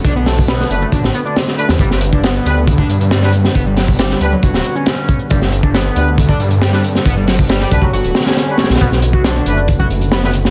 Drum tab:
HH |x---o---x---x---x---x---x---x-x-|x---x---x---x---x---x-x-x---x---|x---o---x---x---x---x---x---x---|x---x---x---x---x---x-x-x---x---|
SH |x-x-x-x-x-x-x-x-x-x-x-x-x-x-x-x-|x-x-x-x-x-x-x-x-x-x-x-x-x-x-x-x-|x-x-x-x-x-x-x-x-x-x-x-x-x-x-x-x-|x-x-x-x-x-x-x-x-x-x-x-x-x-x-x-x-|
SD |----o---o-o-------o-----o-o---o-|--o-----o---------------o-o---o-|----o---o-o-------o-----o-------|--o-----o---------------o-o---o-|
BD |o-----o---------o---------------|o-----o---------o-o-------------|o-----o---------o-----------o---|o-----o---------o-o-------------|

HH |x---o---x---x---x-x-xxxxx---xxxx|x---x---x---x---x---x-x-x---x---|
SH |x-x-x-x-x-x-x-x-x-x-x-x-x-x-x-x-|x-x-x-x-x-x-x-x-x-x-x-x-x-x-x-x-|
SD |----o---o-o---------ooooo---oooo|--o-----o---------------o-o---o-|
BD |o-----o-----o-o-----------------|o-----o---------o-o-------------|